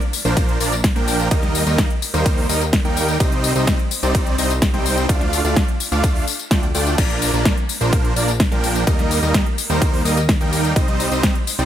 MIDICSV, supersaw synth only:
0, 0, Header, 1, 2, 480
1, 0, Start_track
1, 0, Tempo, 472441
1, 1333, Time_signature, 4, 2, 24, 8
1, 11838, End_track
2, 0, Start_track
2, 0, Title_t, "Supersaw synth"
2, 0, Program_c, 0, 81
2, 254, Note_on_c, 0, 53, 102
2, 254, Note_on_c, 0, 58, 91
2, 254, Note_on_c, 0, 62, 95
2, 254, Note_on_c, 0, 70, 89
2, 254, Note_on_c, 0, 72, 106
2, 585, Note_off_c, 0, 53, 0
2, 585, Note_off_c, 0, 58, 0
2, 585, Note_off_c, 0, 62, 0
2, 585, Note_off_c, 0, 70, 0
2, 585, Note_off_c, 0, 72, 0
2, 614, Note_on_c, 0, 53, 83
2, 614, Note_on_c, 0, 58, 71
2, 614, Note_on_c, 0, 62, 74
2, 614, Note_on_c, 0, 70, 78
2, 614, Note_on_c, 0, 74, 90
2, 758, Note_off_c, 0, 53, 0
2, 758, Note_off_c, 0, 58, 0
2, 758, Note_off_c, 0, 62, 0
2, 758, Note_off_c, 0, 70, 0
2, 758, Note_off_c, 0, 74, 0
2, 973, Note_on_c, 0, 53, 99
2, 973, Note_on_c, 0, 58, 92
2, 973, Note_on_c, 0, 70, 92
2, 974, Note_on_c, 0, 62, 86
2, 974, Note_on_c, 0, 79, 109
2, 1304, Note_off_c, 0, 53, 0
2, 1304, Note_off_c, 0, 70, 0
2, 1305, Note_off_c, 0, 58, 0
2, 1305, Note_off_c, 0, 62, 0
2, 1305, Note_off_c, 0, 79, 0
2, 1333, Note_on_c, 0, 55, 102
2, 1333, Note_on_c, 0, 75, 112
2, 1334, Note_on_c, 0, 63, 94
2, 1664, Note_off_c, 0, 75, 0
2, 1665, Note_off_c, 0, 55, 0
2, 1665, Note_off_c, 0, 63, 0
2, 1693, Note_on_c, 0, 55, 82
2, 1693, Note_on_c, 0, 58, 75
2, 1693, Note_on_c, 0, 63, 77
2, 1693, Note_on_c, 0, 70, 77
2, 1693, Note_on_c, 0, 75, 88
2, 1923, Note_off_c, 0, 55, 0
2, 1923, Note_off_c, 0, 58, 0
2, 1923, Note_off_c, 0, 63, 0
2, 1923, Note_off_c, 0, 70, 0
2, 1923, Note_off_c, 0, 75, 0
2, 2172, Note_on_c, 0, 70, 93
2, 2173, Note_on_c, 0, 55, 100
2, 2173, Note_on_c, 0, 58, 89
2, 2173, Note_on_c, 0, 63, 91
2, 2173, Note_on_c, 0, 72, 109
2, 2504, Note_off_c, 0, 55, 0
2, 2504, Note_off_c, 0, 58, 0
2, 2504, Note_off_c, 0, 63, 0
2, 2504, Note_off_c, 0, 70, 0
2, 2504, Note_off_c, 0, 72, 0
2, 2533, Note_on_c, 0, 55, 86
2, 2533, Note_on_c, 0, 58, 74
2, 2533, Note_on_c, 0, 63, 76
2, 2533, Note_on_c, 0, 70, 79
2, 2533, Note_on_c, 0, 75, 91
2, 2677, Note_off_c, 0, 55, 0
2, 2677, Note_off_c, 0, 58, 0
2, 2677, Note_off_c, 0, 63, 0
2, 2677, Note_off_c, 0, 70, 0
2, 2677, Note_off_c, 0, 75, 0
2, 2893, Note_on_c, 0, 58, 88
2, 2894, Note_on_c, 0, 55, 99
2, 2894, Note_on_c, 0, 63, 91
2, 2894, Note_on_c, 0, 70, 88
2, 2894, Note_on_c, 0, 79, 104
2, 3224, Note_off_c, 0, 58, 0
2, 3225, Note_off_c, 0, 55, 0
2, 3225, Note_off_c, 0, 63, 0
2, 3225, Note_off_c, 0, 70, 0
2, 3225, Note_off_c, 0, 79, 0
2, 3253, Note_on_c, 0, 55, 102
2, 3253, Note_on_c, 0, 60, 94
2, 3253, Note_on_c, 0, 63, 92
2, 3253, Note_on_c, 0, 72, 94
2, 3253, Note_on_c, 0, 75, 110
2, 3584, Note_off_c, 0, 55, 0
2, 3584, Note_off_c, 0, 60, 0
2, 3584, Note_off_c, 0, 63, 0
2, 3584, Note_off_c, 0, 72, 0
2, 3584, Note_off_c, 0, 75, 0
2, 3613, Note_on_c, 0, 55, 85
2, 3613, Note_on_c, 0, 60, 76
2, 3613, Note_on_c, 0, 63, 76
2, 3613, Note_on_c, 0, 72, 75
2, 3613, Note_on_c, 0, 75, 93
2, 3844, Note_off_c, 0, 55, 0
2, 3844, Note_off_c, 0, 60, 0
2, 3844, Note_off_c, 0, 63, 0
2, 3844, Note_off_c, 0, 72, 0
2, 3844, Note_off_c, 0, 75, 0
2, 4093, Note_on_c, 0, 60, 91
2, 4093, Note_on_c, 0, 63, 94
2, 4093, Note_on_c, 0, 72, 89
2, 4093, Note_on_c, 0, 74, 109
2, 4094, Note_on_c, 0, 55, 102
2, 4424, Note_off_c, 0, 60, 0
2, 4424, Note_off_c, 0, 63, 0
2, 4424, Note_off_c, 0, 72, 0
2, 4424, Note_off_c, 0, 74, 0
2, 4425, Note_off_c, 0, 55, 0
2, 4453, Note_on_c, 0, 63, 74
2, 4453, Note_on_c, 0, 75, 89
2, 4454, Note_on_c, 0, 55, 81
2, 4454, Note_on_c, 0, 60, 80
2, 4454, Note_on_c, 0, 72, 77
2, 4597, Note_off_c, 0, 63, 0
2, 4597, Note_off_c, 0, 75, 0
2, 4598, Note_off_c, 0, 55, 0
2, 4598, Note_off_c, 0, 60, 0
2, 4598, Note_off_c, 0, 72, 0
2, 4813, Note_on_c, 0, 60, 90
2, 4813, Note_on_c, 0, 63, 88
2, 4813, Note_on_c, 0, 72, 89
2, 4813, Note_on_c, 0, 79, 102
2, 4814, Note_on_c, 0, 55, 95
2, 5144, Note_off_c, 0, 60, 0
2, 5144, Note_off_c, 0, 63, 0
2, 5144, Note_off_c, 0, 72, 0
2, 5144, Note_off_c, 0, 79, 0
2, 5145, Note_off_c, 0, 55, 0
2, 5173, Note_on_c, 0, 57, 106
2, 5173, Note_on_c, 0, 62, 91
2, 5173, Note_on_c, 0, 65, 91
2, 5173, Note_on_c, 0, 74, 93
2, 5173, Note_on_c, 0, 77, 115
2, 5504, Note_off_c, 0, 57, 0
2, 5504, Note_off_c, 0, 62, 0
2, 5504, Note_off_c, 0, 65, 0
2, 5504, Note_off_c, 0, 74, 0
2, 5504, Note_off_c, 0, 77, 0
2, 5534, Note_on_c, 0, 57, 78
2, 5534, Note_on_c, 0, 62, 77
2, 5534, Note_on_c, 0, 65, 71
2, 5534, Note_on_c, 0, 74, 77
2, 5534, Note_on_c, 0, 77, 90
2, 5764, Note_off_c, 0, 57, 0
2, 5764, Note_off_c, 0, 62, 0
2, 5764, Note_off_c, 0, 65, 0
2, 5764, Note_off_c, 0, 74, 0
2, 5764, Note_off_c, 0, 77, 0
2, 6014, Note_on_c, 0, 57, 102
2, 6014, Note_on_c, 0, 62, 89
2, 6014, Note_on_c, 0, 65, 90
2, 6014, Note_on_c, 0, 74, 86
2, 6014, Note_on_c, 0, 77, 105
2, 6345, Note_off_c, 0, 57, 0
2, 6345, Note_off_c, 0, 62, 0
2, 6345, Note_off_c, 0, 65, 0
2, 6345, Note_off_c, 0, 74, 0
2, 6345, Note_off_c, 0, 77, 0
2, 6614, Note_on_c, 0, 57, 100
2, 6614, Note_on_c, 0, 62, 92
2, 6614, Note_on_c, 0, 65, 87
2, 6614, Note_on_c, 0, 74, 88
2, 6614, Note_on_c, 0, 79, 106
2, 6757, Note_off_c, 0, 65, 0
2, 6758, Note_off_c, 0, 57, 0
2, 6758, Note_off_c, 0, 62, 0
2, 6758, Note_off_c, 0, 74, 0
2, 6758, Note_off_c, 0, 79, 0
2, 6854, Note_on_c, 0, 74, 77
2, 6855, Note_on_c, 0, 57, 86
2, 6855, Note_on_c, 0, 62, 80
2, 6855, Note_on_c, 0, 65, 79
2, 6855, Note_on_c, 0, 79, 95
2, 7065, Note_off_c, 0, 57, 0
2, 7065, Note_off_c, 0, 62, 0
2, 7065, Note_off_c, 0, 65, 0
2, 7065, Note_off_c, 0, 74, 0
2, 7065, Note_off_c, 0, 79, 0
2, 7093, Note_on_c, 0, 62, 98
2, 7094, Note_on_c, 0, 53, 104
2, 7094, Note_on_c, 0, 58, 89
2, 7094, Note_on_c, 0, 70, 92
2, 7094, Note_on_c, 0, 74, 113
2, 7424, Note_off_c, 0, 62, 0
2, 7425, Note_off_c, 0, 53, 0
2, 7425, Note_off_c, 0, 58, 0
2, 7425, Note_off_c, 0, 70, 0
2, 7425, Note_off_c, 0, 74, 0
2, 7454, Note_on_c, 0, 53, 79
2, 7454, Note_on_c, 0, 58, 73
2, 7454, Note_on_c, 0, 62, 73
2, 7454, Note_on_c, 0, 74, 84
2, 7455, Note_on_c, 0, 70, 76
2, 7684, Note_off_c, 0, 53, 0
2, 7684, Note_off_c, 0, 58, 0
2, 7684, Note_off_c, 0, 62, 0
2, 7684, Note_off_c, 0, 70, 0
2, 7684, Note_off_c, 0, 74, 0
2, 7933, Note_on_c, 0, 58, 89
2, 7934, Note_on_c, 0, 53, 100
2, 7934, Note_on_c, 0, 62, 95
2, 7934, Note_on_c, 0, 70, 88
2, 7934, Note_on_c, 0, 72, 106
2, 8264, Note_off_c, 0, 58, 0
2, 8265, Note_off_c, 0, 53, 0
2, 8265, Note_off_c, 0, 62, 0
2, 8265, Note_off_c, 0, 70, 0
2, 8265, Note_off_c, 0, 72, 0
2, 8294, Note_on_c, 0, 53, 83
2, 8294, Note_on_c, 0, 58, 75
2, 8294, Note_on_c, 0, 62, 76
2, 8294, Note_on_c, 0, 70, 73
2, 8294, Note_on_c, 0, 74, 89
2, 8437, Note_off_c, 0, 53, 0
2, 8438, Note_off_c, 0, 58, 0
2, 8438, Note_off_c, 0, 62, 0
2, 8438, Note_off_c, 0, 70, 0
2, 8438, Note_off_c, 0, 74, 0
2, 8653, Note_on_c, 0, 53, 95
2, 8653, Note_on_c, 0, 58, 91
2, 8653, Note_on_c, 0, 62, 93
2, 8653, Note_on_c, 0, 79, 105
2, 8654, Note_on_c, 0, 70, 87
2, 8984, Note_off_c, 0, 53, 0
2, 8984, Note_off_c, 0, 58, 0
2, 8984, Note_off_c, 0, 62, 0
2, 8984, Note_off_c, 0, 79, 0
2, 8985, Note_off_c, 0, 70, 0
2, 9014, Note_on_c, 0, 55, 100
2, 9014, Note_on_c, 0, 58, 97
2, 9014, Note_on_c, 0, 63, 93
2, 9014, Note_on_c, 0, 70, 92
2, 9014, Note_on_c, 0, 75, 112
2, 9345, Note_off_c, 0, 55, 0
2, 9345, Note_off_c, 0, 58, 0
2, 9345, Note_off_c, 0, 63, 0
2, 9345, Note_off_c, 0, 70, 0
2, 9345, Note_off_c, 0, 75, 0
2, 9374, Note_on_c, 0, 55, 86
2, 9374, Note_on_c, 0, 58, 71
2, 9374, Note_on_c, 0, 63, 74
2, 9374, Note_on_c, 0, 70, 74
2, 9374, Note_on_c, 0, 75, 93
2, 9604, Note_off_c, 0, 55, 0
2, 9604, Note_off_c, 0, 58, 0
2, 9604, Note_off_c, 0, 63, 0
2, 9604, Note_off_c, 0, 70, 0
2, 9604, Note_off_c, 0, 75, 0
2, 9853, Note_on_c, 0, 55, 101
2, 9853, Note_on_c, 0, 58, 92
2, 9853, Note_on_c, 0, 63, 95
2, 9853, Note_on_c, 0, 70, 93
2, 9853, Note_on_c, 0, 72, 113
2, 10184, Note_off_c, 0, 55, 0
2, 10184, Note_off_c, 0, 58, 0
2, 10184, Note_off_c, 0, 63, 0
2, 10184, Note_off_c, 0, 70, 0
2, 10184, Note_off_c, 0, 72, 0
2, 10212, Note_on_c, 0, 55, 81
2, 10212, Note_on_c, 0, 58, 76
2, 10212, Note_on_c, 0, 63, 78
2, 10213, Note_on_c, 0, 70, 73
2, 10213, Note_on_c, 0, 75, 96
2, 10357, Note_off_c, 0, 55, 0
2, 10357, Note_off_c, 0, 58, 0
2, 10357, Note_off_c, 0, 63, 0
2, 10357, Note_off_c, 0, 70, 0
2, 10357, Note_off_c, 0, 75, 0
2, 10572, Note_on_c, 0, 63, 87
2, 10573, Note_on_c, 0, 55, 94
2, 10573, Note_on_c, 0, 58, 90
2, 10573, Note_on_c, 0, 70, 85
2, 10573, Note_on_c, 0, 79, 104
2, 10904, Note_off_c, 0, 55, 0
2, 10904, Note_off_c, 0, 58, 0
2, 10904, Note_off_c, 0, 63, 0
2, 10904, Note_off_c, 0, 70, 0
2, 10904, Note_off_c, 0, 79, 0
2, 10933, Note_on_c, 0, 55, 101
2, 10933, Note_on_c, 0, 60, 94
2, 10933, Note_on_c, 0, 63, 97
2, 10933, Note_on_c, 0, 72, 98
2, 10933, Note_on_c, 0, 75, 113
2, 11264, Note_off_c, 0, 55, 0
2, 11264, Note_off_c, 0, 60, 0
2, 11264, Note_off_c, 0, 63, 0
2, 11264, Note_off_c, 0, 72, 0
2, 11264, Note_off_c, 0, 75, 0
2, 11293, Note_on_c, 0, 55, 79
2, 11293, Note_on_c, 0, 60, 73
2, 11293, Note_on_c, 0, 63, 76
2, 11293, Note_on_c, 0, 72, 76
2, 11293, Note_on_c, 0, 75, 92
2, 11523, Note_off_c, 0, 60, 0
2, 11523, Note_off_c, 0, 75, 0
2, 11524, Note_off_c, 0, 55, 0
2, 11524, Note_off_c, 0, 63, 0
2, 11524, Note_off_c, 0, 72, 0
2, 11773, Note_on_c, 0, 55, 99
2, 11773, Note_on_c, 0, 60, 91
2, 11773, Note_on_c, 0, 63, 87
2, 11774, Note_on_c, 0, 72, 90
2, 11774, Note_on_c, 0, 74, 105
2, 11838, Note_off_c, 0, 55, 0
2, 11838, Note_off_c, 0, 60, 0
2, 11838, Note_off_c, 0, 63, 0
2, 11838, Note_off_c, 0, 72, 0
2, 11838, Note_off_c, 0, 74, 0
2, 11838, End_track
0, 0, End_of_file